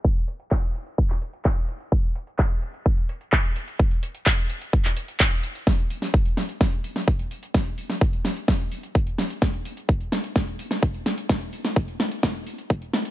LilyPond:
\new DrumStaff \with { instrumentName = "Drums" } \drummode { \time 4/4 \tempo 4 = 128 <hh bd>16 hh16 hh16 hh16 <hc bd>16 hh16 hh16 hh16 <hh bd>16 <hc hh>16 hh16 hh16 <hc hh bd>8 hh16 hh16 | <hh bd>16 hh16 hh16 hh16 <hc hh bd>16 hh16 hh16 hh16 <hh bd>16 hh16 hh16 hh16 <hc hh bd>16 hh16 hh16 hh16 | <hh bd>16 hh16 hh16 hh16 <hc hh bd>16 hh16 hh16 hh16 <hh bd>16 <hc hh>16 hh16 hh16 <hc hh bd>16 hh16 hh16 hh16 | <hh bd sn>16 hh16 hho16 <hh sn>16 <hh bd>16 hh16 <hho sn>16 hh16 <hh bd sn>16 hh16 hho16 <hh sn>16 <hh bd>16 hh16 hho16 hh16 |
<hh bd sn>16 hh16 hho16 <hh sn>16 <hh bd>16 hh16 <hho sn>16 hh16 <hh bd sn>16 hh16 hho16 hh16 <hh bd>16 hh16 <hho sn>16 hh16 | <hh bd sn>16 hh16 hho16 hh16 <hh bd>16 hh16 <hho sn>16 hh16 <hh bd sn>16 hh16 hho16 <hh sn>16 <hh bd>16 hh16 <hho sn>16 hh16 | <hh bd sn>16 hh16 hho16 <hh sn>16 <hh bd>16 hh16 <hho sn>16 hh16 <hh bd sn>16 hh16 hho16 hh16 <hh bd>16 hh16 <hho sn>16 hh16 | }